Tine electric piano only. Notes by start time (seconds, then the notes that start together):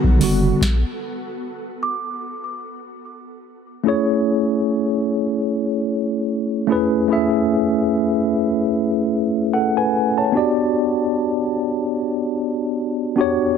0.19 D3 G3 B3
0.24 F#4
3.84 A3 C#4 E4 G#4
3.88 C#5
6.67 A3 C#4 E4 G#4
6.72 B4
7.08 A3 C#4 E4 G#4
7.13 E5
9.54 A4 F#5
9.77 B4 G#5
10.18 C#5 A5
10.32 B3 D4 F#4 G4
10.37 D5
13.16 B3 D4 F#4 G4
13.21 C#5